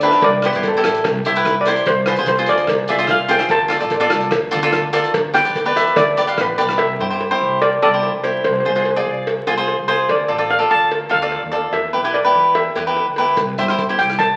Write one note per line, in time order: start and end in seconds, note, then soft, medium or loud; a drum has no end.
0.01 0.23 D4 medium
0.01 0.23 G4 medium
0.01 0.23 B4 medium
0.01 0.24 E5 medium
0.01 closed hi-hat medium
0.01 cowbell medium
0.11 cross-stick medium
0.11 closed hi-hat medium
0.21 0.47 C2 loud
0.21 0.44 D5 medium
0.21 kick loud
0.21 closed hi-hat soft
0.21 cowbell loud
0.42 0.50 E4 medium
0.42 0.50 G4 soft
0.42 0.66 B4 medium
0.42 0.50 C5 medium
0.42 cross-stick medium
0.42 closed hi-hat medium
0.53 0.78 G2 medium
0.53 0.67 E4 medium
0.53 0.67 G4 medium
0.53 0.67 C5 medium
0.53 closed hi-hat medium
0.63 kick medium
0.63 closed hi-hat medium
0.63 cowbell medium
0.68 0.85 A4 medium
0.77 1.06 E4 medium
0.77 1.06 G4 medium
0.77 1.06 A4 medium
0.84 1.00 A1 medium
0.84 cross-stick medium
0.84 closed hi-hat medium
0.84 cowbell medium
0.95 closed hi-hat medium
1.04 1.21 C2 loud
1.04 kick loud
1.04 cross-stick medium
1.04 closed hi-hat medium
1.04 cowbell loud
1.25 1.74 C2 medium
1.25 1.32 E4 medium
1.25 1.32 G4 medium
1.25 1.32 C5 medium
1.25 1.61 E5 medium
1.25 closed hi-hat medium
1.36 1.54 E4 medium
1.36 1.54 G4 medium
1.36 1.55 B4 medium
1.36 closed hi-hat medium
1.45 kick medium
1.45 cross-stick medium
1.45 closed hi-hat medium
1.45 cowbell medium
1.61 1.88 D5 medium
1.65 1.87 E4 medium
1.65 1.87 G4 medium
1.65 1.87 C5 medium
1.65 closed hi-hat loud
1.65 cowbell medium
1.76 closed hi-hat medium
1.86 2.11 C2 medium
1.86 2.06 C5 medium
1.86 kick loud
1.86 closed hi-hat medium
1.86 cowbell medium
2.06 2.14 F4 medium
2.06 2.14 G#4 medium
2.06 2.28 B4 medium
2.06 2.14 C5 medium
2.06 cross-stick medium
2.06 closed hi-hat medium
2.16 2.42 C2 medium
2.16 2.30 F4 medium
2.16 2.30 G#4 medium
2.16 2.30 C5 medium
2.16 closed hi-hat medium
2.26 2.49 C5 medium
2.26 kick medium
2.26 closed hi-hat medium
2.26 cowbell medium
2.38 2.69 F4 medium
2.38 2.69 G#4 medium
2.38 2.69 C5 medium
2.46 2.65 D2 medium
2.46 2.91 D5 medium
2.46 closed hi-hat medium
2.46 cowbell medium
2.58 closed hi-hat medium
2.67 2.85 C2 medium
2.67 kick loud
2.67 cross-stick medium
2.67 closed hi-hat medium
2.67 cowbell loud
2.88 3.38 C2 medium
2.88 2.95 F4 medium
2.88 2.95 G#4 medium
2.88 2.95 D5 medium
2.88 3.09 E5 medium
2.88 closed hi-hat medium
2.99 3.18 F4 medium
2.99 3.18 G#4 medium
2.99 3.18 C5 medium
2.99 closed hi-hat medium
3.07 3.29 F5 loud
3.07 kick medium
3.07 cross-stick medium
3.07 closed hi-hat medium
3.07 cowbell medium
3.28 3.50 F4 medium
3.28 3.50 G#4 medium
3.28 3.50 C5 medium
3.28 3.52 G5 medium
3.28 closed hi-hat loud
3.28 cowbell medium
3.39 cross-stick medium
3.39 closed hi-hat medium
3.49 3.75 D2 loud
3.49 3.89 A5 loud
3.49 kick loud
3.49 closed hi-hat soft
3.49 cowbell loud
3.68 3.76 F4 medium
3.68 3.77 A4 medium
3.68 3.77 D5 medium
3.68 cross-stick medium
3.68 closed hi-hat medium
3.80 4.06 A1 medium
3.80 3.93 F4 medium
3.80 3.93 A4 medium
3.80 3.93 D5 medium
3.80 closed hi-hat medium
3.90 kick medium
3.90 closed hi-hat medium
3.90 cowbell medium
4.00 4.32 F4 medium
4.00 4.32 A4 medium
4.00 4.32 D5 loud
4.10 4.29 C2 medium
4.10 cross-stick medium
4.10 closed hi-hat medium
4.10 cowbell medium
4.21 closed hi-hat medium
4.31 4.48 D2 loud
4.31 kick loud
4.31 cross-stick medium
4.31 closed hi-hat medium
4.31 cowbell loud
4.51 5.02 D2 loud
4.51 4.59 F4 medium
4.51 4.59 A4 medium
4.51 4.59 D5 loud
4.51 closed hi-hat medium
4.62 4.82 F4 loud
4.62 4.82 A4 medium
4.62 4.82 D5 medium
4.62 closed hi-hat medium
4.72 kick medium
4.72 cross-stick medium
4.72 closed hi-hat medium
4.72 cowbell medium
4.93 5.14 F4 medium
4.93 5.14 A4 medium
4.93 5.14 D5 loud
4.93 closed hi-hat loud
4.93 cowbell medium
5.04 closed hi-hat medium
5.14 5.39 D2 loud
5.14 kick loud
5.14 closed hi-hat medium
5.14 cowbell loud
5.34 5.41 G4 medium
5.34 5.41 B4 medium
5.34 5.41 D5 medium
5.34 5.77 G5 loud
5.34 cross-stick medium
5.34 closed hi-hat medium
5.45 5.70 D2 medium
5.45 5.57 G4 medium
5.45 5.58 B4 soft
5.45 5.58 D5 medium
5.45 closed hi-hat medium
5.55 kick medium
5.55 closed hi-hat medium
5.55 cowbell medium
5.65 5.96 G4 medium
5.65 5.97 B4 medium
5.65 5.97 D5 medium
5.76 5.93 E2 medium
5.76 5.98 E5 loud
5.76 closed hi-hat loud
5.76 cowbell medium
5.87 closed hi-hat medium
5.96 6.13 D2 loud
5.96 6.39 D5 loud
5.96 kick loud
5.96 cross-stick medium
5.96 closed hi-hat medium
5.96 cowbell loud
6.17 6.36 G1 medium
6.17 6.24 G4 medium
6.17 6.24 B4 medium
6.17 6.24 D5 medium
6.17 closed hi-hat medium
6.27 6.46 G4 medium
6.27 6.46 B4 medium
6.27 6.47 F5 medium
6.27 closed hi-hat medium
6.37 6.57 A1 medium
6.37 6.50 B4 medium
6.37 kick medium
6.37 cross-stick medium
6.37 closed hi-hat medium
6.37 cowbell medium
6.58 6.77 B1 medium
6.58 6.79 G4 medium
6.58 6.79 B4 medium
6.58 6.79 D5 medium
6.58 closed hi-hat medium
6.58 cowbell medium
6.69 cross-stick medium
6.69 closed hi-hat medium
6.78 6.95 C2 medium
6.78 7.57 E5 medium
6.78 cowbell loud
6.99 7.32 G2 medium
6.99 7.06 E4 medium
6.99 7.06 G4 medium
6.99 7.07 C5 medium
7.10 7.22 E4 medium
7.10 7.23 G4 medium
7.10 7.23 C5 medium
7.20 cowbell medium
7.31 7.62 E4 medium
7.31 7.61 G4 medium
7.31 7.62 C5 loud
7.41 7.74 C2 medium
7.62 7.81 D5 medium
7.62 cowbell medium
7.82 8.07 C2 medium
7.82 7.89 E4 soft
7.82 7.89 G4 medium
7.82 7.89 A4 medium
7.82 8.25 D5 medium
7.82 cowbell medium
7.93 8.12 E4 medium
7.93 8.11 G4 medium
7.93 8.12 C5 medium
8.03 cowbell medium
8.14 8.38 C2 medium
8.24 8.44 E4 medium
8.24 8.44 G4 medium
8.24 8.43 C5 medium
8.24 8.44 C5 medium
8.24 cowbell medium
8.44 8.60 C2 loud
8.44 8.51 C5 medium
8.44 cowbell medium
8.53 8.59 C5 medium
8.61 8.67 C5 medium
8.65 8.97 C2 medium
8.65 8.71 F4 medium
8.65 8.71 G#4 medium
8.65 8.71 C5 medium
8.65 8.75 C5 medium
8.75 8.87 F4 medium
8.75 8.87 G#4 medium
8.75 8.81 C5 medium
8.75 8.88 C5 medium
8.82 8.89 C5 medium
8.82 cowbell medium
8.90 8.97 C5 soft
8.96 9.27 F4 medium
8.96 9.27 G#4 medium
8.96 9.27 D5 medium
9.05 9.38 C2 medium
9.27 cowbell medium
9.47 9.71 C2 medium
9.47 9.53 F4 medium
9.47 9.53 G#4 medium
9.47 9.53 C5 medium
9.47 cowbell medium
9.57 9.76 F4 medium
9.57 9.76 G#4 medium
9.57 9.76 C5 medium
9.68 cowbell medium
9.79 10.02 C2 medium
9.88 10.09 F4 medium
9.88 10.09 G#4 medium
9.88 10.09 C5 medium
9.88 cowbell medium
10.09 10.25 D2 loud
10.09 10.52 D5 medium
10.09 cowbell medium
10.28 10.62 A1 medium
10.28 10.35 F4 medium
10.28 10.35 A4 medium
10.28 10.35 D5 medium
10.38 10.51 F4 medium
10.38 10.51 A4 soft
10.38 10.51 D5 medium
10.50 10.71 F5 medium
10.50 cowbell medium
10.59 10.90 F4 medium
10.59 10.90 A4 medium
10.59 10.90 D5 medium
10.71 11.03 D2 medium
10.71 11.09 A5 medium
10.91 cowbell medium
11.09 11.36 D2 medium
11.09 11.17 F4 medium
11.09 11.17 A4 medium
11.09 11.17 D5 medium
11.09 11.69 F5 medium
11.09 cowbell medium
11.22 11.40 F4 medium
11.22 11.40 A4 medium
11.22 11.41 D5 medium
11.32 cowbell medium
11.43 11.67 D#2 medium
11.52 11.73 F4 medium
11.52 11.73 A4 medium
11.52 11.73 D5 medium
11.52 cowbell medium
11.73 11.89 E2 medium
11.73 12.11 E5 medium
11.73 cowbell medium
11.93 12.26 B1 medium
11.93 12.00 E4 medium
11.93 12.00 G4 soft
11.93 12.00 B4 medium
12.04 12.16 E4 medium
12.04 12.16 G4 medium
12.04 12.17 B4 medium
12.14 12.56 D5 medium
12.14 cowbell medium
12.25 12.55 E4 medium
12.25 12.56 G4 medium
12.25 12.55 B4 medium
12.35 12.67 E2 medium
12.55 12.93 E5 medium
12.55 cowbell medium
12.75 13.00 E2 medium
12.75 12.82 E4 medium
12.75 12.82 G4 medium
12.75 12.83 B4 medium
12.75 cowbell medium
12.87 13.05 E4 medium
12.87 13.05 G4 medium
12.87 13.05 B4 medium
12.96 cowbell medium
13.07 13.31 D2 medium
13.16 13.38 E4 medium
13.16 13.38 G4 medium
13.16 13.38 B4 loud
13.16 cowbell medium
13.37 13.54 C2 medium
13.37 kick medium
13.37 closed hi-hat medium
13.37 cowbell medium
13.58 13.91 G2 medium
13.58 13.65 E4 soft
13.58 13.65 G4 medium
13.58 13.65 C5 medium
13.58 14.00 E5 medium
13.58 closed hi-hat medium
13.68 13.81 E4 medium
13.68 13.81 G4 soft
13.68 13.81 C5 medium
13.68 cross-stick medium
13.68 closed hi-hat medium
13.78 kick medium
13.78 closed hi-hat medium
13.78 cowbell medium
13.89 14.20 E4 medium
13.89 14.20 G4 medium
13.89 14.20 C5 medium
13.99 14.31 C2 medium
13.99 14.08 G5 medium
13.99 closed hi-hat medium
14.10 cross-stick medium
14.10 closed hi-hat medium
14.19 14.37 A5 loud
14.19 kick medium
14.19 closed hi-hat soft
14.19 cowbell medium